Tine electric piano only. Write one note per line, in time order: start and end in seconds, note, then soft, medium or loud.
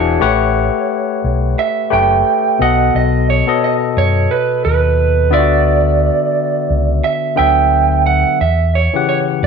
0.00 0.23 E3 medium
0.00 0.23 D4 medium
0.00 0.23 F#4 medium
0.00 0.23 G#4 medium
0.00 0.22 C5 medium
0.00 0.22 C#5 medium
0.00 0.23 D5 medium
0.00 0.23 G#5 medium
0.20 1.41 A3 medium
0.20 1.41 G4 medium
0.20 1.42 B4 medium
0.20 1.42 C#5 medium
0.20 1.42 F#5 loud
1.90 2.59 A3 medium
1.90 2.59 G4 medium
1.90 2.60 B4 medium
1.90 2.60 C#5 medium
1.90 2.60 G5 medium
2.59 3.34 B2 medium
2.59 3.34 B3 medium
2.59 3.35 A4 medium
2.59 3.35 D#5 loud
3.46 4.63 B2 medium
3.46 4.63 B3 medium
3.46 4.63 A4 medium
3.46 4.64 D#5 medium
5.30 6.52 D3 medium
5.30 6.52 B3 medium
5.30 5.40 F4 medium
5.30 6.53 E5 medium
5.39 6.56 F#4 medium
7.36 8.39 D3 medium
7.36 8.40 F#3 medium
7.36 8.40 B3 medium
7.36 8.41 E5 medium
8.93 9.47 C#3 medium
8.93 9.47 E3 medium
8.93 9.47 G4 medium
8.93 9.47 F#5 medium